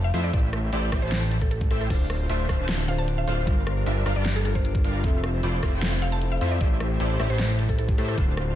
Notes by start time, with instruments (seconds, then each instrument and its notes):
Already playing: analog synth bass F1, supersaw synth A3 E4 F4 C5 G5
0.04 synth pluck F5
0.14 analog synth bass F2, supersaw synth A3 E4 F4 C5 E5, closed hi-hat
0.24 synth pluck D5
0.33 analog synth bass A1, supersaw synth A3 E4 G4 C5 E5, synth pluck D5, kick, closed hi-hat
0.53 cross-stick, closed hi-hat
0.73 analog synth bass A1, supersaw synth A3 E4 G4 C5 D5, closed hi-hat
0.92 analog synth bass A1, supersaw synth A3 E4 G4 C5 E5, kick, cross-stick, closed hi-hat
1.02 analog synth bass A1, supersaw synth A3 E4 G4 C5 A5, synth pluck C5
1.12 snare, closed hi-hat
1.31 closed hi-hat
1.41 synth pluck A4, kick
1.51 synth pluck A4, closed hi-hat
1.61 kick
1.71 analog synth bass A1, supersaw synth A3 E4 G4 C5 E5, synth pluck A4, closed hi-hat
1.81 synth pluck A4
1.88 analog synth bass D1, synth keys D3 D4 F4 C5, supersaw synth A3 D4 F4 C5 F5, harp D4, synth pluck A4, kick, closed hi-hat, crash
2.00 harp F4
2.10 harp A4, cross-stick, closed hi-hat
2.20 harp C5
2.29 analog synth bass D1, supersaw synth A3 D4 F4 C5 E5, harp D4, closed hi-hat
2.40 harp F4
2.49 analog synth bass D1, supersaw synth A3 D4 F4 C5 F5, harp A4, kick, cross-stick, open hi-hat
2.59 analog synth bass D1, supersaw synth A3 D4 F4 C5 A5, harp C5
2.69 harp D4, snare, closed hi-hat
2.79 harp F4
2.86 synth keys D3 D4 F4, harp A4, synth pluck F5, closed hi-hat
2.90 synth keys C5
2.98 harp C5, synth pluck A5
3.08 harp D4, closed hi-hat
3.18 harp F4, synth pluck F5
3.28 analog synth bass D1, supersaw synth A3 D4 F4 C5 F5, harp A4, closed hi-hat
3.38 harp C5
3.45 analog synth bass G1, synth keys G3 D4 F4, supersaw synth G3 D4 F4 A#4 F5, harp D4, kick, closed hi-hat
3.49 synth keys A#4
3.57 harp F4
3.67 harp G4, cross-stick, closed hi-hat
3.77 harp A#4
3.86 analog synth bass G1, supersaw synth G3 D4 F4 A#4 E5, harp D4, closed hi-hat
3.96 harp F4
4.06 analog synth bass G1, supersaw synth G3 D4 F4 A#4 F5, harp G4, cross-stick, open hi-hat
4.16 analog synth bass G1, supersaw synth G3 D4 F4 A#4 A5, harp A#4, synth pluck D5
4.26 harp D4, snare, closed hi-hat
4.36 harp F4, synth pluck A4
4.43 synth keys G3 D4 F4 A#4, harp G4, synth pluck A4, closed hi-hat
4.55 harp A#4, synth pluck C5, kick
4.65 harp D4, closed hi-hat
4.75 harp F4, kick
4.84 analog synth bass G1, supersaw synth G3 D4 F4 A#4 F5, harp G4, closed hi-hat
4.94 harp A#4
5.02 analog synth bass F1, synth keys F3 C4 A4 E5, supersaw synth A3 E4 F4 C5 E5, harp E4, kick, closed hi-hat
5.14 harp F4
5.24 harp A4, cross-stick, closed hi-hat
5.34 harp C5
5.43 analog synth bass F1, supersaw synth A3 E4 F4 C5 D5, harp E4, closed hi-hat
5.53 harp F4
5.63 analog synth bass F1, supersaw synth A3 E4 F4 C5 E5, harp A4, kick, cross-stick, open hi-hat
5.73 analog synth bass F1, supersaw synth A3 E4 F4 C5 G5, harp C5
5.82 harp E4, snare, closed hi-hat
5.92 harp F4
6.00 synth keys F3 C4 A4 E5, harp A4, synth pluck F5, closed hi-hat
6.12 harp C5, synth pluck A5
6.22 harp E4, closed hi-hat
6.32 harp F4, synth pluck F5
6.41 analog synth bass F2, supersaw synth A3 E4 F4 C5 E5, harp A4, closed hi-hat
6.51 harp C5, synth pluck D5
6.59 analog synth bass A1, synth keys A3 E4 G4, supersaw synth A3 E4 G4 E5, harp E4, synth pluck D5, kick, closed hi-hat
6.63 synth keys C5
6.71 harp G4
6.80 harp A4, cross-stick, closed hi-hat
6.90 harp C5
7.00 analog synth bass A1, supersaw synth A3 E4 G4 C5 D5, harp E4, closed hi-hat
7.10 harp G4
7.20 analog synth bass A1, supersaw synth A3 E4 G4 C5 E5, harp A4, cross-stick, open hi-hat
7.30 analog synth bass A1, supersaw synth A3 E4 G4 C5 A5, harp C5, synth pluck C5
7.39 harp E4, snare, closed hi-hat
7.49 harp G4
7.59 harp A4, closed hi-hat
7.69 synth pluck A4, harp C5, kick
7.78 harp E4, synth pluck A4, closed hi-hat
7.88 harp G4, kick
7.97 analog synth bass A2, synth keys A3 E4 G4 C5, supersaw synth A3 E4 G4 C5 E5, harp A4, synth pluck A4, closed hi-hat
8.08 synth pluck A4, harp C5
8.16 analog synth bass D1, synth keys D3 D4 F4, supersaw synth A3 D4 F4 C5 F5, harp D4, synth pluck A4, kick, closed hi-hat
8.20 synth keys C5
8.28 harp F4
8.37 harp A4, cross-stick, closed hi-hat
8.47 harp C5